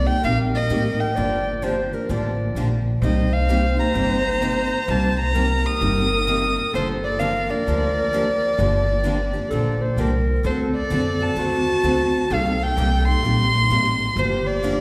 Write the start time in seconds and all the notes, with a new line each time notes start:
0.06 A#3 D#4 G4 G5
0.22 A#1 C3 G3 A#3 D#4 G4 A#4 F5
0.55 D#5
0.69 A1 C3 G3 A#3 D#4 G4
1.00 G5
1.16 G1 D3 F3 A#3 D4 G4 D5
1.62 D3 F3 A#3 D4 G4 C5
1.93 A#3 D4 G4 A#4
2.09 A1 D3 F3 A#3 D4 G4 D5
2.55 A#1 D3 F3 A#3 D4 G4
3.01 C2 C3 G3 A#3 D#4 G4 C5 D#5
3.33 F5
3.49 C3 G3 A#3 D#4 G4
3.77 A#3 D#4 G4 A#5
3.94 G1 C3 G3 A#3 D#4 G4
4.42 C3 G3 A#3 D#4 G4
4.88 C2 C3 G3 A#3 D#4 G4 A5
5.20 A#5
5.34 C3 G3 A#3 D#4 G4 A#4
5.64 A#3 D#4 G4 D#6
5.81 G1 C3 G3 A#3 D#4 G4
6.27 C3 G3 A#3 D#4 G4
6.73 G1 D3 F3 A#3 D4 G4 A4 C5
7.04 D5
7.19 D3 F3 A#3 D4 G4 A#4 F5
7.50 A#3 D4 G4 D5
7.67 D2 D3 F3 A#3 D4 G4
8.13 D3 F3 A#3 D4 G4
8.59 G1 D3 F3 A#3 D4 G4
9.04 D3 F3 A#3 D4 G4
9.33 A#3 D4 G4
9.50 A#1 D3 F3 A#3 D4 G4 A4
9.81 C5
9.96 C2 D3 F3 A#3 D4 G4
10.01 A#4
10.43 D2 D3 A3 C4 F#4 A4 C5
10.76 D5
10.90 F#2 D3 A3 C4 F#4 A4
11.19 C4 F#4 A4 A5
11.36 D#2 D3 A3 C4 F#4 A4
11.83 D2 D3 A3 C4 F#4 A4
12.30 C2 C3 G3 A#3 D#4 G4 A4 F5
12.63 G5
12.77 C2 C3 G3 A#3 D#4 G4
13.07 A#3 D#4 G4 C6
13.23 A#1 C3 G3 A#3 D#4 G4
13.70 A1 C3 G3 A#3 D#4 G4
14.14 G1 D3 F3 A#3 G4
14.18 D4 G4 C5
14.47 D5
14.64 D3 F3 A#3 D4 G4